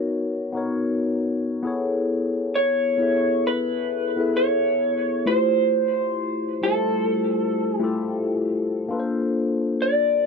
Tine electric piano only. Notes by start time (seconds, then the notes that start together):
Already playing: B3 D#4 F#4 A#4 C#5
0.53 B3 D#4 F#4 A#4
0.57 C#5
1.62 B3 E4 G#4 A4
1.67 C#5
2.98 B3 E4 G#4 A4
3.03 E5
4.16 B3 E4 G#4 A4
4.21 E5
5.26 A3 E4 F4 G4
5.30 C5
6.61 G3 E4 F4 G4
6.66 A3 C5
7.80 A3 E4 F4 G4
7.84 A4
8.88 A#3 D4 F4 A4
8.93 B4
8.99 C5